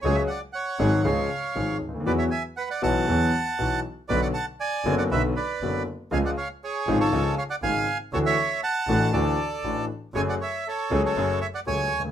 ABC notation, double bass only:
X:1
M:4/4
L:1/8
Q:1/4=119
K:C#phr
V:1 name="Double bass" clef=bass
C,, z2 G,,, C,, z G,,, D,, | E,, z2 B,,, E,, z B,,, z | B,,, z2 F,,, B,,, z F,,, z | C,, z2 G,,, C,, z G,,, z |
D,, z2 A,,, D,, z A,,, z | F,,, z2 C,, F,,, z C,, D,, |]